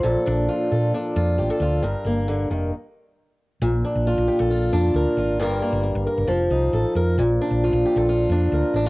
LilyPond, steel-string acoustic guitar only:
\new Staff \with { instrumentName = "Steel-string acoustic guitar" } { \time 4/4 \key bes \major \tempo 4 = 135 << { a'8 d'8 f'8 a'8 d'8 f'8 g'16 a'16 f'8 | bes'8 bes4. r2 | r8 d'8 f'8 g'16 a'16 f'8 d'8 bes'8 f'8 | <g bes f' bes'>8 bes4 bes'8 r8 ees'8 a'8 bes'8 |
r8 d'8 f'8 g'16 a'16 f'8 d'8 bes'8 d'16 f'16 | } \\ { <bes, f>1 | g,4 d8 ees8 r2 | bes,1 | g,2 f2 |
bes,1 | } >> }